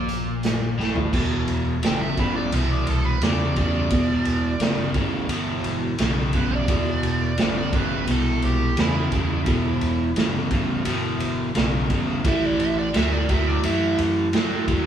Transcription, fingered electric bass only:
Already playing: A#1
0.78 A1
1.13 E1
1.49 E1
1.83 A1
2.17 A1
2.52 C2
2.87 C2
3.22 E2
3.56 E2
3.91 E1
4.26 E1
4.60 G1
4.95 G1
5.29 G1
5.63 G1
5.98 B1
6.33 B1
6.68 E1
7.03 E1
7.38 A1
7.73 A1
8.07 C2
8.42 C2
8.77 E2
9.12 E2
9.46 E1
9.82 E1
10.17 G1
10.51 G1
10.87 G1
11.21 G1
11.56 B1
11.90 G#1
12.25 A1
12.60 A1
12.95 D2
13.28 D2
13.64 F#2
13.99 F#2
14.33 A2
14.68 D#2

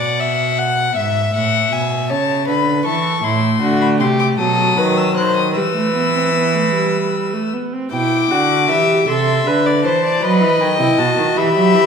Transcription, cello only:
Already playing: B2
0.96 G#2
1.35 A2
1.72 B2
2.10 C#3
2.48 D3
2.86 E3
3.24 A2
3.62 D3
4.00 C3
4.39 B2
4.78 D#3
5.17 D#3
5.56 E3
7.92 B2
8.31 D3
8.70 E3
9.08 C3
9.46 D3
9.84 E3
10.23 F#3
10.41 E3
10.60 D#3
10.79 C3
10.98 B2
11.17 D#3
11.36 E3
11.55 F#3
11.74 E3

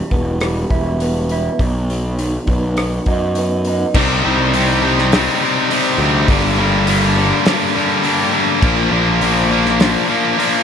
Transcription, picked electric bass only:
0.12 E1
0.70 E1
1.59 B1
2.47 B1
3.06 F#2
3.95 C2
4.25 C2
5.98 D2
6.29 G1
8.62 A#1
8.91 A#1

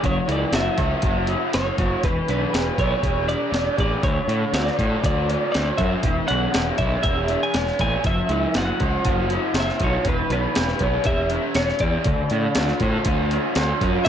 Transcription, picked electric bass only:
0.04 F#1
0.28 C#2
0.52 F#1
0.78 C#2
1.03 F#1
1.55 F#1
1.78 F#1
2.04 E1
2.29 B1
2.54 E1
2.78 B1
3.03 E1
3.52 E1
3.79 A1
4.03 D2
4.28 A2
4.53 D2
4.79 A2
5.04 D2
5.55 D2
5.79 F#2
6.03 E1
6.31 B1
6.55 E1
6.80 B1
7.04 E1
7.55 E1
7.80 A1
8.05 F#1
8.29 C#2
8.55 F#1
8.81 C#2
9.05 F#1
9.54 F#1
9.81 B1
10.05 E1
10.30 B1
10.57 E1
10.81 B1
11.06 E1
11.55 E1
11.81 E2
12.06 D2
12.31 A2
12.56 D2
12.81 A2
13.06 D2
13.56 D2
13.82 F#2

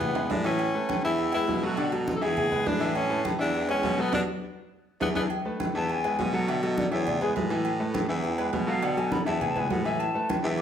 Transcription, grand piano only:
Already playing: E3 E4 E5
0.16 G#3 G#4 B4
0.45 E3 E4 E5
0.75 A3 A4 B4
1.04 E3 E4 E5
1.34 G#3 G#4 B4
1.63 F#3 F#4 A4
1.78 D3 D4 D5
1.92 F#3 F#4 A4
2.21 E3 E4 E5
2.51 G#3 G#4 B4
2.80 E3 E4 E5
3.10 A3 A4 B4
3.39 E3 E4 E5
3.68 G#3 G#4 B4
3.98 F#3 F#4 A4
4.12 B3 D4 F#4
5.00 D4 E4 G#4
5.15 D4 E4 G#4
5.45 A3 A4 B4
5.75 E3 E4 E5
6.04 G#3 G#4 B4
6.33 F#3 F#4 A4
6.48 D3 D4 D5
6.62 F#3 F#4 A4
6.91 E3 E4 E5
7.22 G#3 G#4 B4
7.50 E3 E4 E5
7.79 A3 A4 B4
8.09 E3 E4 E5
8.38 G#3 G#4 B4
8.67 F#3 F#4 A4
8.82 D3 D4 D5
8.97 F#3 F#4 A4
9.26 E3 E4 E5
9.55 G#3 G#4 B4
9.85 E3 E4 E5
10.14 A3 A4 B4
10.44 E3 E4 E5

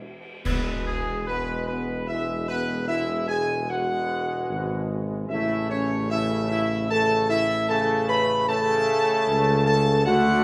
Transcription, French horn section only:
0.45 B3
0.87 G#3
1.28 B3
1.69 B3
2.09 E4
2.49 B3
2.88 E4
3.27 G#4
3.69 F#4
5.30 E4
5.70 C#4
6.11 E4
6.50 E4
6.90 A4
7.30 E4
7.69 A4
8.09 B4
8.48 A4
9.66 A4
10.06 F#4

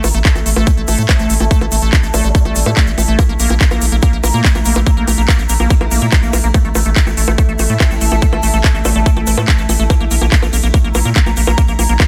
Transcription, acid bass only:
0.04 A3
0.14 A3
0.25 A3
0.35 A3
0.46 A3
0.56 A3
0.67 A3
0.77 A3
0.88 A3
0.98 A3
1.09 A3
1.19 A3
1.30 A3
1.40 A3
1.51 A3
1.61 A3
1.72 A3
1.82 A3
1.93 A3
2.03 A3
2.14 A3
2.24 A3
2.35 A3
2.45 A3
2.56 A3
2.66 A3
2.77 A3
2.87 A3
2.98 A3
3.08 A3
3.19 A#3
3.29 A#3
3.40 A#3
3.50 A#3
3.61 A#3
3.71 A#3
3.82 A#3
3.92 A#3
4.03 A#3
4.13 A#3
4.24 A#3
4.34 A#3
4.45 A#3
4.55 A#3
4.66 A#3
4.76 A#3
4.87 A#3
4.97 A#3
5.07 A#3
5.18 A#3
5.28 A#3
5.39 A#3
5.49 A#3
5.60 A#3
5.70 A#3
5.81 A#3
5.91 A#3
6.02 A#3
6.12 A#3
6.23 A#3
6.33 A#3
6.44 A#3
6.54 A3
6.65 A3
6.75 A3
6.86 A3
6.96 A3
7.07 A3
7.17 A3
7.28 A3
7.38 A3
7.49 A3
7.59 A3
7.70 A3
7.80 A3
7.91 A3
8.01 A3
8.12 A3
8.22 A3
8.33 A3
8.43 A3
8.54 A3
8.64 A3
8.75 A3
8.85 A3
8.96 A3
9.06 A3
9.17 A3
9.27 A3
9.38 A3
9.48 A3
9.59 A3
9.69 A3
9.79 A3
9.90 A#3
10.00 A#3
10.11 A#3
10.21 A#3
10.32 A#3
10.42 A#3
10.53 A#3
10.63 A#3
10.74 A#3
10.84 A#3
10.95 A#3
11.05 A#3
11.16 A#3
11.26 A#3
11.37 A#3
11.47 A#3
11.58 A#3
11.68 A#3
11.79 A#3
11.89 A#3
12.00 A#3

